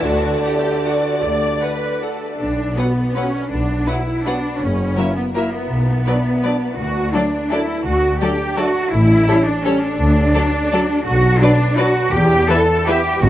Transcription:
0.03 0.36 D2 medium
0.03 0.37 D2 medium
0.03 2.03 D3 medium
0.03 0.39 F#4 medium
0.03 2.03 D5 medium
0.44 0.82 G4 medium
0.44 0.52 F#5 soft
0.85 1.23 F#4 medium
0.85 0.94 F#5 soft
1.23 1.55 D2 medium
1.23 1.55 D2 soft
1.23 1.62 D5 medium
1.62 2.03 B4 medium
1.62 1.70 F#5 soft
2.03 2.40 A4 soft
2.03 2.11 F#5 soft
2.40 2.71 B1 medium
2.40 2.75 D4 medium
2.77 2.85 F#3 soft
2.77 3.16 B3 medium
2.77 2.92 B3 medium
2.77 2.91 F#4 medium
2.77 2.86 B4 soft
2.77 2.86 F#5 medium
3.16 3.24 F#3 soft
3.16 3.29 B3 medium
3.16 3.52 C#4 medium
3.16 3.29 F#4 medium
3.16 3.24 B4 medium
3.16 3.24 F#5 medium
3.51 3.81 B1 medium
3.51 3.87 D4 medium
3.87 3.96 F#3 medium
3.87 4.01 B3 soft
3.87 4.26 E4 medium
3.87 4.01 F#4 soft
3.87 3.95 B4 medium
3.87 3.97 F#5 medium
4.26 4.34 F#3 soft
4.26 4.39 B3 medium
4.26 4.62 D4 medium
4.26 4.40 F#4 medium
4.26 4.34 B4 medium
4.26 4.34 F#5 medium
4.61 4.91 F#1 medium
4.61 5.17 C#4 medium
4.97 5.05 F#3 medium
4.97 5.12 A#3 medium
4.97 5.12 E4 soft
4.97 5.05 A#4 soft
4.97 5.07 E5 medium
5.18 5.25 B3 medium
5.35 5.43 F#3 medium
5.35 5.53 A#3 medium
5.35 5.49 A#3 medium
5.35 5.49 E4 medium
5.35 5.43 A#4 medium
5.35 5.44 E5 medium
5.54 6.79 B3 medium
5.71 6.00 B1 medium
6.06 6.15 F#3 medium
6.06 6.20 B3 medium
6.06 6.20 D4 medium
6.06 6.14 B4 medium
6.06 6.14 D5 medium
6.43 6.52 F#3 medium
6.43 6.56 B3 medium
6.43 6.57 D4 medium
6.43 6.51 B4 medium
6.43 6.52 D5 medium
6.79 7.09 D2 medium
6.79 7.14 F#4 medium
7.14 7.23 F#3 medium
7.14 7.29 A3 medium
7.14 7.28 D4 soft
7.14 7.52 D4 medium
7.14 7.22 A4 medium
7.14 7.23 D5 medium
7.51 7.60 F#3 medium
7.51 7.65 A3 medium
7.51 7.65 D4 medium
7.51 7.86 E4 medium
7.51 7.60 A4 medium
7.51 7.59 D5 medium
7.86 8.15 D2 medium
7.86 8.21 F#4 medium
8.21 8.29 F#3 medium
8.21 8.35 A3 medium
8.21 8.36 D4 medium
8.21 8.57 G4 medium
8.21 8.30 A4 medium
8.21 8.29 D5 medium
8.57 8.65 F#3 medium
8.57 8.71 A3 medium
8.57 8.71 D4 medium
8.57 8.93 F#4 loud
8.57 8.66 A4 medium
8.57 8.66 D5 medium
8.93 9.22 A1 medium
8.93 9.47 E4 loud
9.28 9.37 G3 medium
9.28 9.42 G3 medium
9.28 9.42 C#4 medium
9.28 9.37 A4 medium
9.28 9.36 C#5 medium
9.47 9.65 D4 medium
9.65 9.73 G3 medium
9.65 9.78 G3 medium
9.65 9.83 C#4 medium
9.65 9.78 C#4 medium
9.65 9.74 A4 medium
9.65 9.73 C#5 medium
9.83 11.07 D4 loud
10.00 10.29 D2 medium
10.34 10.43 F#3 medium
10.34 10.49 F#3 medium
10.34 10.49 D4 medium
10.34 10.43 A4 medium
10.34 10.42 D5 medium
10.71 10.80 F#3 medium
10.71 10.85 F#3 medium
10.71 10.85 D4 medium
10.71 10.81 A4 medium
10.71 10.79 D5 medium
11.06 11.36 B1 loud
11.06 11.41 F#4 loud
11.41 11.49 F#3 medium
11.41 11.55 F#3 medium
11.41 11.78 D4 loud
11.41 11.55 D4 medium
11.41 11.51 B4 medium
11.41 11.50 D5 medium
11.78 11.86 F#3 medium
11.78 11.91 F#3 medium
11.78 11.91 D4 medium
11.78 12.13 F#4 loud
11.78 11.87 B4 medium
11.78 11.86 D5 medium
12.13 12.43 E2 loud
12.13 12.50 G4 loud
12.50 12.58 E3 medium
12.50 12.64 B3 medium
12.50 12.64 E4 medium
12.50 12.88 A4 loud
12.50 12.58 B4 medium
12.50 12.58 E5 medium
12.87 12.95 E3 medium
12.87 13.00 B3 medium
12.87 13.00 E4 medium
12.87 13.23 G4 loud
12.87 12.96 B4 medium
12.87 12.97 E5 medium
13.23 13.29 A1 medium
13.23 13.29 A2 medium
13.23 13.29 F#4 loud

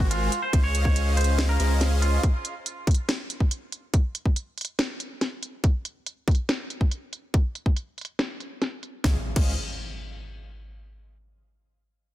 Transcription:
0.00 0.29 G#1 medium
0.00 0.31 G#3 medium
0.00 0.31 F#4 medium
0.00 0.31 A#4 medium
0.00 0.31 C5 medium
0.00 0.31 G#5 medium
0.00 kick medium
0.11 0.39 F4 loud
0.11 closed hi-hat medium
0.32 closed hi-hat medium
0.43 0.62 C5 medium
0.53 1.57 C#2 loud
0.53 1.57 C#4 medium
0.53 1.57 G#4 medium
0.53 1.57 C5 medium
0.53 1.57 D#5 medium
0.53 1.57 F5 loud
0.53 kick loud
0.53 closed hi-hat medium
0.64 0.83 C#5 medium
0.75 closed hi-hat medium
0.85 1.14 C#5 medium
0.85 kick medium
0.96 closed hi-hat medium
1.17 1.46 C5 medium
1.17 closed hi-hat soft
1.21 closed hi-hat medium
1.24 closed hi-hat medium
1.39 snare loud
1.39 closed hi-hat medium
1.49 1.78 A#4 loud
1.59 2.19 C#2 medium
1.59 2.21 C#4 medium
1.59 2.21 G#4 medium
1.59 2.21 C5 medium
1.59 2.21 D#5 medium
1.59 2.21 F5 loud
1.59 closed hi-hat medium
1.81 snare medium
1.81 closed hi-hat medium
2.02 2.21 F4 medium
2.02 closed hi-hat medium
2.23 kick loud
2.23 closed hi-hat medium
2.45 closed hi-hat medium
2.66 closed hi-hat medium
2.87 kick loud
2.87 closed hi-hat soft
2.91 closed hi-hat medium
2.94 closed hi-hat medium
3.09 snare loud
3.09 closed hi-hat medium
3.30 closed hi-hat medium
3.40 kick medium
3.51 closed hi-hat medium
3.72 closed hi-hat medium
3.94 kick loud
3.94 closed hi-hat medium
4.15 closed hi-hat medium
4.26 kick medium
4.36 closed hi-hat medium
4.58 closed hi-hat soft
4.61 closed hi-hat medium
4.65 closed hi-hat medium
4.79 snare loud
4.79 closed hi-hat medium
5.00 closed hi-hat medium
5.21 snare medium
5.21 closed hi-hat medium
5.43 closed hi-hat medium
5.64 kick loud
5.64 closed hi-hat medium
5.85 closed hi-hat medium
6.06 closed hi-hat medium
6.28 kick loud
6.28 closed hi-hat soft
6.31 closed hi-hat medium
6.35 closed hi-hat medium
6.49 snare loud
6.49 closed hi-hat medium
6.70 closed hi-hat medium
6.81 kick medium
6.91 closed hi-hat medium
7.13 closed hi-hat medium
7.34 kick loud
7.34 closed hi-hat medium
7.55 closed hi-hat medium
7.66 kick medium
7.76 closed hi-hat medium
7.98 closed hi-hat soft
8.01 closed hi-hat medium
8.05 closed hi-hat medium
8.19 snare loud
8.19 closed hi-hat medium
8.40 closed hi-hat medium
8.62 snare medium
8.62 closed hi-hat medium
8.83 closed hi-hat medium
9.04 9.16 C#2 loud
9.04 9.16 C#4 medium
9.04 9.16 G#4 medium
9.04 9.16 C5 medium
9.04 9.16 D#5 medium
9.04 9.16 F5 medium
9.04 kick loud
9.04 snare medium
9.04 impact medium
9.36 9.56 C#2 medium
9.36 9.52 C#4 medium
9.36 9.52 G#4 medium
9.36 9.52 C5 medium
9.36 9.52 D#5 medium
9.36 9.52 F5 loud
9.36 kick loud
9.36 crash medium

